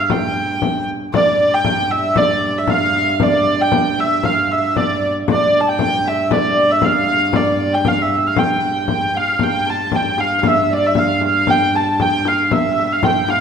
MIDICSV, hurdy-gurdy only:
0, 0, Header, 1, 2, 480
1, 0, Start_track
1, 0, Tempo, 517241
1, 97, Time_signature, 2, 2, 24, 8
1, 12441, End_track
2, 0, Start_track
2, 0, Title_t, "Hurdy-gurdy"
2, 0, Program_c, 0, 110
2, 0, Note_on_c, 0, 77, 72
2, 104, Note_off_c, 0, 77, 0
2, 104, Note_on_c, 0, 79, 79
2, 784, Note_off_c, 0, 79, 0
2, 1056, Note_on_c, 0, 74, 91
2, 1430, Note_off_c, 0, 74, 0
2, 1430, Note_on_c, 0, 79, 93
2, 1773, Note_on_c, 0, 76, 88
2, 1784, Note_off_c, 0, 79, 0
2, 2017, Note_off_c, 0, 76, 0
2, 2017, Note_on_c, 0, 74, 83
2, 2392, Note_off_c, 0, 74, 0
2, 2392, Note_on_c, 0, 76, 77
2, 2503, Note_off_c, 0, 76, 0
2, 2503, Note_on_c, 0, 77, 97
2, 2997, Note_off_c, 0, 77, 0
2, 2997, Note_on_c, 0, 74, 80
2, 3354, Note_off_c, 0, 74, 0
2, 3354, Note_on_c, 0, 79, 94
2, 3712, Note_off_c, 0, 79, 0
2, 3712, Note_on_c, 0, 76, 97
2, 3944, Note_off_c, 0, 76, 0
2, 3944, Note_on_c, 0, 77, 92
2, 4190, Note_off_c, 0, 77, 0
2, 4190, Note_on_c, 0, 76, 81
2, 4424, Note_off_c, 0, 76, 0
2, 4424, Note_on_c, 0, 74, 85
2, 4755, Note_off_c, 0, 74, 0
2, 4925, Note_on_c, 0, 74, 81
2, 5198, Note_off_c, 0, 74, 0
2, 5198, Note_on_c, 0, 81, 61
2, 5279, Note_off_c, 0, 81, 0
2, 5279, Note_on_c, 0, 79, 91
2, 5639, Note_off_c, 0, 79, 0
2, 5639, Note_on_c, 0, 76, 78
2, 5864, Note_on_c, 0, 74, 77
2, 5867, Note_off_c, 0, 76, 0
2, 6225, Note_off_c, 0, 74, 0
2, 6225, Note_on_c, 0, 76, 75
2, 6350, Note_off_c, 0, 76, 0
2, 6350, Note_on_c, 0, 77, 93
2, 6829, Note_off_c, 0, 77, 0
2, 6829, Note_on_c, 0, 74, 75
2, 7185, Note_off_c, 0, 74, 0
2, 7185, Note_on_c, 0, 79, 74
2, 7311, Note_off_c, 0, 79, 0
2, 7311, Note_on_c, 0, 77, 81
2, 7439, Note_off_c, 0, 77, 0
2, 7439, Note_on_c, 0, 76, 68
2, 7673, Note_off_c, 0, 76, 0
2, 7673, Note_on_c, 0, 77, 66
2, 7786, Note_off_c, 0, 77, 0
2, 7786, Note_on_c, 0, 79, 72
2, 8507, Note_off_c, 0, 79, 0
2, 8507, Note_on_c, 0, 77, 87
2, 8753, Note_off_c, 0, 77, 0
2, 8753, Note_on_c, 0, 79, 89
2, 9002, Note_off_c, 0, 79, 0
2, 9002, Note_on_c, 0, 81, 86
2, 9238, Note_off_c, 0, 81, 0
2, 9238, Note_on_c, 0, 79, 89
2, 9468, Note_off_c, 0, 79, 0
2, 9468, Note_on_c, 0, 77, 80
2, 9638, Note_off_c, 0, 77, 0
2, 9638, Note_on_c, 0, 77, 64
2, 9719, Note_off_c, 0, 77, 0
2, 9719, Note_on_c, 0, 76, 86
2, 9958, Note_off_c, 0, 76, 0
2, 9958, Note_on_c, 0, 74, 71
2, 10082, Note_off_c, 0, 74, 0
2, 10082, Note_on_c, 0, 76, 70
2, 10197, Note_off_c, 0, 76, 0
2, 10197, Note_on_c, 0, 77, 87
2, 10443, Note_off_c, 0, 77, 0
2, 10443, Note_on_c, 0, 77, 94
2, 10675, Note_off_c, 0, 77, 0
2, 10675, Note_on_c, 0, 79, 97
2, 10909, Note_off_c, 0, 79, 0
2, 10909, Note_on_c, 0, 81, 90
2, 11149, Note_off_c, 0, 81, 0
2, 11149, Note_on_c, 0, 79, 94
2, 11393, Note_off_c, 0, 79, 0
2, 11393, Note_on_c, 0, 77, 81
2, 11619, Note_on_c, 0, 76, 74
2, 11623, Note_off_c, 0, 77, 0
2, 11867, Note_off_c, 0, 76, 0
2, 11867, Note_on_c, 0, 76, 69
2, 11993, Note_off_c, 0, 76, 0
2, 11993, Note_on_c, 0, 77, 74
2, 12102, Note_off_c, 0, 77, 0
2, 12102, Note_on_c, 0, 79, 91
2, 12341, Note_off_c, 0, 79, 0
2, 12341, Note_on_c, 0, 77, 86
2, 12441, Note_off_c, 0, 77, 0
2, 12441, End_track
0, 0, End_of_file